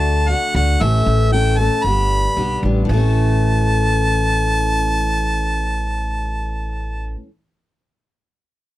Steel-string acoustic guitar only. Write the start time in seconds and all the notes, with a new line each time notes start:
Already playing: D3 A3 D4 F#4
0.27 D3 A3 D4 F#4
0.54 A3 D4 F#4
0.80 A2 E3 A3 C#4 A4
1.32 E3 A3 C#4 A4
1.58 A3 C#4 A4
1.84 G3 B3 D4 G4
2.37 G3 B3 D4 G4
2.63 G3 B3 D4 G4
2.85 A2
2.90 E3 A3
2.97 C#4 A4